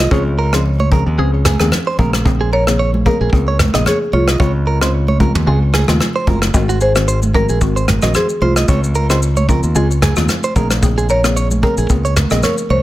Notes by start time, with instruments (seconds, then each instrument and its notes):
Already playing: marimba F4
0.11 fingered electric bass C#2, synth pluck F3 C4 C#4 G#4, clean electric guitar C#5, kick
0.39 clean electric guitar A#4
0.52 synth pluck F3 C4 C#4 G#4, clean electric guitar C5, cross-stick
0.80 clean electric guitar C#5, high conga
0.91 synth pluck F3 C4 C#4 G#4, clean electric guitar A#4, kick, low conga
1.06 fingered electric bass D#2
1.18 fingered electric bass C#2, synth pluck F3 C4 C#4 G#4, clean electric guitar G#4
1.45 clean electric guitar G#4, cross-stick, mid tom, high conga
1.59 fingered electric bass D#2, synth pluck F3 C4 C#4 G#4, cross-stick, high conga
1.72 cross-stick, high conga, low conga
1.87 clean electric guitar C5
1.98 fingered electric bass A#1, synth pluck C#3 A#3 C4 G#4, clean electric guitar A#4, kick, high conga, low conga
2.13 cross-stick
2.25 synth pluck C#3 A#3 C4 G#4, kick
2.41 clean electric guitar G#4
2.53 clean electric guitar A#4, marimba C#5
2.67 synth pluck C#3 A#3 C4 G#4, cross-stick
2.79 clean electric guitar C#5
2.94 high conga
3.06 synth pluck C#3 A#3 C4 G#4, clean electric guitar A#4, marimba A#4, kick, low conga
3.21 fingered electric bass A#1, clean electric guitar G#4
3.32 fingered electric bass C#2, synth pluck C#3 A#3 C4 G#4, kick
3.48 clean electric guitar C#5
3.59 cross-stick, mid tom, high conga
3.74 fingered electric bass A#1, synth pluck C#3 A#3 C4 G#4, clean electric guitar D#5, cross-stick, high conga
3.86 marimba G#4, clean electric guitar C#5, cross-stick, high conga, low conga
4.13 fingered electric bass C2, marimba F4, clean electric guitar C#5, high conga, low conga
4.28 clean electric guitar D#5, cross-stick
4.39 fingered electric bass C#2, synth pluck C#3 G#3 C4 F4, clean electric guitar C#5, kick
4.67 clean electric guitar A#4
4.81 synth pluck C#3 G#3 C4 F4, clean electric guitar C5, cross-stick
5.08 clean electric guitar C#5, high conga
5.20 synth pluck C#3 G#3 C4 F4, clean electric guitar A#4, kick, low conga
5.35 fingered electric bass D#2, mid tom
5.47 fingered electric bass C#2, synth pluck C#3 G#3 C4 F4, clean electric guitar G#4
5.74 clean electric guitar G#4, cross-stick, high conga
5.88 fingered electric bass D#2, synth pluck C#3 G#3 C4 F4, cross-stick, high conga
6.00 cross-stick, high conga, low conga
6.16 clean electric guitar C5
6.27 fingered electric bass F#1, synth pluck C#3 G#3 C4 F4, clean electric guitar A#4, kick, high conga, low conga
6.42 cross-stick
6.54 fingered electric bass G#1, synth pluck D#3 G#3 C4 F#4, kick, shaker
6.69 clean electric guitar F#4, shaker
6.81 clean electric guitar G#4, marimba C5, shaker
6.95 synth pluck D#3 G#3 C4 F#4, cross-stick, shaker
7.08 clean electric guitar C5, shaker
7.22 high conga, shaker
7.34 synth pluck D#3 G#3 C4 F#4, clean electric guitar A#4, marimba A#4, kick, low conga
7.49 fingered electric bass A#1, clean electric guitar G#4, shaker
7.61 fingered electric bass G#1, synth pluck D#3 G#3 C4 F#4, kick, shaker
7.76 clean electric guitar C5, shaker
7.88 cross-stick, mid tom, high conga
8.02 fingered electric bass A#1, synth pluck D#3 G#3 C4 F#4, clean electric guitar D#5, cross-stick, high conga, shaker
8.14 marimba G#4, clean electric guitar C5, cross-stick, high conga, low conga, shaker
8.29 shaker
8.42 fingered electric bass C2, marimba F4, clean electric guitar C5, high conga, low conga
8.56 clean electric guitar D#5, cross-stick, shaker
8.68 fingered electric bass C#2, synth pluck C#3 G#3 C4 F4, clean electric guitar C#5, kick, shaker
8.84 shaker
8.95 clean electric guitar A#4, shaker
9.10 synth pluck C#3 G#3 C4 F4, clean electric guitar C5, cross-stick, shaker
9.22 shaker
9.37 clean electric guitar C#5, high conga, shaker
9.48 synth pluck C#3 G#3 C4 F4, clean electric guitar A#4, kick, low conga, shaker
9.63 fingered electric bass D#2, shaker
9.75 fingered electric bass C#2, synth pluck C#3 G#3 C4 F4, clean electric guitar G#4, shaker
9.91 shaker
10.02 clean electric guitar G#4, cross-stick, mid tom, high conga
10.16 fingered electric bass D#2, synth pluck C#3 G#3 C4 F4, cross-stick, high conga, shaker
10.29 cross-stick, high conga, low conga, shaker
10.43 clean electric guitar C5, shaker
10.55 fingered electric bass A#1, synth pluck C#3 A#3 C4 G#4, clean electric guitar A#4, kick, high conga, low conga, shaker
10.71 cross-stick, shaker
10.82 synth pluck C#3 A#3 C4 G#4, kick, shaker
10.98 clean electric guitar G#4, shaker
11.09 clean electric guitar A#4, marimba C#5, shaker
11.24 synth pluck C#3 A#3 C4 G#4, cross-stick, shaker
11.37 clean electric guitar C#5, shaker
11.51 high conga, shaker
11.63 synth pluck C#3 A#3 C4 G#4, clean electric guitar A#4, marimba A#4, kick, low conga
11.77 fingered electric bass A#1, clean electric guitar G#4, shaker
11.89 fingered electric bass C#2, synth pluck C#3 A#3 C4 G#4, kick, shaker
12.05 clean electric guitar C#5, shaker
12.16 cross-stick, mid tom, high conga, shaker
12.30 fingered electric bass A#1, synth pluck C#3 A#3 C4 G#4, clean electric guitar D#5, cross-stick, high conga, shaker
12.43 marimba A#4, clean electric guitar C#5, cross-stick, high conga, low conga, shaker
12.58 shaker
12.70 fingered electric bass C2, marimba C5, clean electric guitar C#5, high conga, low conga